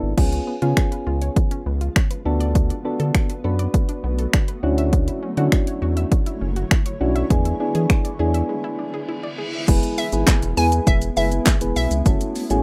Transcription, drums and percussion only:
0.18 kick loud
0.18 closed hi-hat medium
0.18 crash medium
0.33 closed hi-hat medium
0.62 closed hi-hat soft
0.77 finger snap loud
0.77 kick loud
0.77 closed hi-hat medium
0.92 closed hi-hat soft
1.22 closed hi-hat medium
1.36 kick loud
1.36 closed hi-hat medium
1.51 closed hi-hat soft
1.81 closed hi-hat soft
1.96 finger snap loud
1.96 kick loud
1.96 closed hi-hat medium
2.11 closed hi-hat medium
2.41 closed hi-hat medium
2.55 kick loud
2.55 closed hi-hat medium
2.70 closed hi-hat soft
3.00 closed hi-hat soft
3.15 finger snap loud
3.15 kick loud
3.15 closed hi-hat medium
3.30 closed hi-hat soft
3.59 closed hi-hat medium
3.74 kick loud
3.74 closed hi-hat medium
3.89 closed hi-hat medium
4.19 closed hi-hat soft
4.33 finger snap loud
4.33 kick loud
4.33 closed hi-hat medium
4.48 closed hi-hat medium
4.78 closed hi-hat soft
4.93 kick loud
4.93 closed hi-hat medium
5.08 closed hi-hat medium
5.37 closed hi-hat soft
5.52 finger snap loud
5.52 kick loud
5.52 closed hi-hat medium
5.67 closed hi-hat medium
5.97 closed hi-hat medium
6.12 kick loud
6.12 closed hi-hat medium
6.26 closed hi-hat soft
6.56 closed hi-hat soft
6.71 finger snap loud
6.71 kick loud
6.71 closed hi-hat medium
6.86 closed hi-hat medium
7.16 closed hi-hat soft
7.30 kick loud
7.30 closed hi-hat medium
7.45 closed hi-hat medium
7.75 closed hi-hat soft
7.90 finger snap loud
7.90 kick loud
7.90 closed hi-hat medium
8.05 closed hi-hat soft
8.34 closed hi-hat medium
9.68 kick loud
9.68 closed hi-hat medium
9.68 crash loud
9.68 shaker medium
9.83 closed hi-hat medium
9.83 shaker medium
9.98 open hi-hat medium
9.98 shaker medium
10.12 closed hi-hat soft
10.12 shaker medium
10.27 kick loud
10.27 snare loud
10.27 clap loud
10.27 closed hi-hat medium
10.27 shaker medium
10.43 closed hi-hat medium
10.43 shaker medium
10.57 open hi-hat medium
10.57 shaker medium
10.72 closed hi-hat medium
10.72 shaker medium
10.87 kick loud
10.87 closed hi-hat medium
10.87 shaker medium
11.02 closed hi-hat medium
11.02 shaker medium
11.17 open hi-hat medium
11.17 shaker medium
11.32 closed hi-hat soft
11.32 shaker medium
11.46 kick loud
11.46 snare loud
11.46 clap medium
11.46 clap loud
11.46 closed hi-hat medium
11.46 shaker medium
11.61 closed hi-hat medium
11.61 shaker medium
11.76 open hi-hat medium
11.76 shaker medium
11.91 closed hi-hat medium
11.91 shaker medium
12.06 kick loud
12.06 closed hi-hat medium
12.06 shaker medium
12.21 closed hi-hat medium
12.21 shaker medium
12.36 open hi-hat medium
12.36 shaker medium
12.50 closed hi-hat soft
12.50 shaker medium

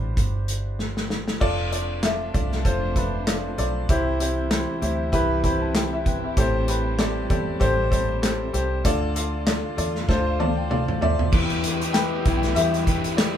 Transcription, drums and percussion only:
0.17 kick medium
0.17 closed hi-hat medium
0.48 closed hi-hat medium
0.79 snare soft
0.97 snare soft
1.10 snare medium
1.28 snare medium
1.41 kick medium
1.41 crash medium
1.73 closed hi-hat medium
2.03 snare medium
2.03 clap medium
2.03 closed hi-hat medium
2.34 kick medium
2.34 closed hi-hat medium
2.52 snare soft
2.65 kick medium
2.65 closed hi-hat medium
2.96 kick medium
2.96 closed hi-hat medium
3.27 snare medium
3.27 clap medium
3.27 closed hi-hat medium
3.58 closed hi-hat medium
3.89 kick loud
3.89 closed hi-hat medium
4.20 closed hi-hat medium
4.51 snare medium
4.51 clap medium
4.51 closed hi-hat medium
4.82 closed hi-hat medium
5.13 kick medium
5.13 closed hi-hat medium
5.44 kick medium
5.44 closed hi-hat medium
5.75 snare loud
5.75 clap medium
5.75 closed hi-hat medium
6.06 kick medium
6.06 closed hi-hat medium
6.37 kick loud
6.37 closed hi-hat medium
6.68 closed hi-hat medium
6.99 snare medium
6.99 clap medium
6.99 closed hi-hat medium
7.30 kick medium
7.30 closed hi-hat medium
7.61 kick medium
7.61 closed hi-hat medium
7.92 kick medium
7.92 closed hi-hat medium
8.23 snare medium
8.23 clap medium
8.23 closed hi-hat medium
8.54 closed hi-hat medium
8.85 kick medium
8.85 closed hi-hat loud
9.16 closed hi-hat medium
9.47 snare medium
9.47 clap medium
9.47 closed hi-hat medium
9.78 closed hi-hat medium
9.95 snare soft
10.09 kick medium
10.09 snare soft
10.40 high tom medium
10.71 mid tom medium
10.88 mid tom medium
11.02 floor tom medium
11.19 floor tom medium
11.33 kick loud
11.33 crash loud
11.50 closed hi-hat soft
11.64 closed hi-hat medium
11.82 closed hi-hat soft
11.94 snare medium
11.94 clap medium
11.94 closed hi-hat medium
12.26 kick medium
12.26 closed hi-hat medium
12.43 snare soft
12.43 closed hi-hat soft
12.56 closed hi-hat medium
12.74 closed hi-hat soft
12.87 kick medium
12.87 closed hi-hat medium
13.04 closed hi-hat soft
13.18 snare loud
13.18 clap medium
13.18 closed hi-hat medium

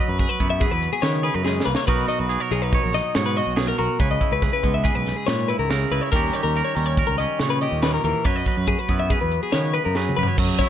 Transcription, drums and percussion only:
0.19 kick medium
0.19 closed hi-hat medium
0.40 kick medium
0.40 closed hi-hat soft
0.61 kick loud
0.61 closed hi-hat medium
0.83 closed hi-hat medium
1.03 snare medium
1.03 closed hi-hat medium
1.23 closed hi-hat soft
1.46 snare medium
1.60 snare medium
1.75 snare medium
1.88 kick medium
1.88 closed hi-hat medium
1.88 splash medium
2.09 closed hi-hat medium
2.30 closed hi-hat medium
2.52 closed hi-hat medium
2.73 kick loud
2.73 closed hi-hat medium
2.94 snare soft
2.94 closed hi-hat soft
3.15 snare loud
3.15 closed hi-hat medium
3.36 closed hi-hat soft
3.57 snare loud
3.57 closed hi-hat medium
3.78 closed hi-hat medium
4.00 kick loud
4.00 closed hi-hat medium
4.21 kick medium
4.21 closed hi-hat medium
4.42 kick medium
4.42 snare soft
4.42 closed hi-hat medium
4.64 kick medium
4.64 closed hi-hat medium
4.85 kick loud
4.85 closed hi-hat medium
5.06 snare soft
5.06 closed hi-hat medium
5.28 snare medium
5.28 closed hi-hat medium
5.49 closed hi-hat medium
5.70 snare medium
5.70 closed hi-hat medium
5.92 closed hi-hat medium
6.13 kick loud
6.13 closed hi-hat medium
6.35 closed hi-hat medium
6.55 closed hi-hat medium
6.76 closed hi-hat soft
6.97 kick loud
6.97 closed hi-hat medium
7.19 closed hi-hat medium
7.39 snare medium
7.39 closed hi-hat medium
7.61 closed hi-hat soft
7.83 snare loud
7.83 closed hi-hat medium
8.04 closed hi-hat medium
8.24 kick medium
8.24 closed hi-hat medium
8.46 kick medium
8.46 closed hi-hat medium
8.67 kick medium
8.67 closed hi-hat medium
8.88 kick medium
8.88 closed hi-hat soft
9.10 kick loud
9.10 closed hi-hat medium
9.32 closed hi-hat medium
9.52 snare loud
9.52 closed hi-hat medium
9.74 closed hi-hat medium
9.95 snare medium
10.09 mid tom medium
10.23 floor tom medium
10.38 kick loud
10.38 crash loud
10.59 kick medium
10.59 snare soft
10.59 closed hi-hat medium

